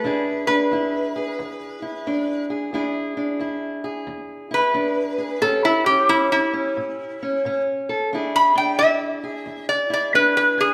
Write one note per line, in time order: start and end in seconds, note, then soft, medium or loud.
0.00 0.66 E2 medium
0.00 0.44 B4 medium
0.05 0.48 D4 medium
0.05 0.72 E4 medium
0.05 1.15 G#4 medium
0.47 2.06 D4 medium
0.47 2.45 B4 medium
0.71 1.33 E2 medium
0.71 1.82 E4 medium
1.16 2.49 G#4 medium
1.39 2.01 E2 medium
1.82 2.74 E4 medium
2.07 2.68 E2 medium
2.07 2.70 D4 medium
2.50 2.70 G#4 medium
2.73 3.35 E2 medium
2.73 3.16 D4 medium
2.73 3.40 E4 medium
2.73 3.83 G#4 medium
3.17 4.73 D4 medium
3.39 4.02 E2 medium
3.39 4.50 E4 medium
3.84 5.17 G#4 medium
4.07 4.69 E2 medium
4.51 5.42 E4 medium
4.51 5.40 B4 medium
4.74 5.36 E2 medium
4.74 5.39 D4 medium
5.18 5.39 G#4 medium
5.41 6.04 A2 medium
5.41 5.85 C#4 medium
5.41 8.08 G4 medium
5.41 5.63 A4 medium
5.65 5.86 E4 medium
5.86 6.09 C#4 medium
5.86 6.08 G4 medium
6.09 6.71 A2 medium
6.09 6.52 C#4 medium
6.09 6.31 E4 medium
6.32 7.62 E4 medium
6.53 7.20 C#4 medium
6.77 7.39 A2 medium
7.23 7.45 C#4 medium
7.45 8.07 A2 medium
7.45 8.09 C#4 medium
7.89 8.09 A4 medium
8.12 8.74 E2 medium
8.12 8.55 D4 medium
8.12 8.81 E4 medium
8.12 9.23 G#4 medium
8.36 8.56 B5 medium
8.56 10.14 D4 medium
8.56 8.79 G5 medium
8.79 9.42 E2 medium
8.79 9.89 E4 medium
8.79 9.66 E5 medium
9.24 10.57 G#4 medium
9.46 10.08 E2 medium
9.69 9.90 D5 medium
9.90 10.74 E4 medium
9.90 10.14 D5 medium
10.14 10.74 E2 medium
10.14 10.74 D4 medium
10.14 10.36 B4 medium
10.37 10.58 B4 medium
10.58 10.74 G#4 medium